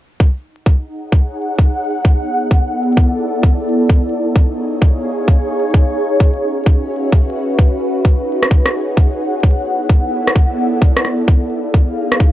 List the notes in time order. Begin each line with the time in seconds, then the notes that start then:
0.20 D#4, kick
0.48 F#5
0.66 kick
1.12 kick
1.59 kick
1.82 B3
2.05 A4, kick
2.11 E4
2.51 kick
2.97 kick
3.43 kick
3.66 D#4
3.88 C#5, kick
3.95 G#4
4.36 kick
4.82 kick
5.28 kick
5.74 C#4, kick
6.06 F#4
6.20 kick
6.49 B4
6.66 kick
7.12 kick
7.59 D#4, kick
8.05 kick
8.32 F#5
8.43 cross-stick
8.51 kick
8.66 cross-stick
8.97 kick
9.20 B3
9.29 E4
9.43 kick
9.57 A4
9.89 kick
10.27 cross-stick
10.36 kick
10.82 kick
10.97 cross-stick
11.05 D#4, cross-stick
11.18 G#4
11.28 F5, kick
11.74 kick
11.82 C#5
12.12 cross-stick
12.20 kick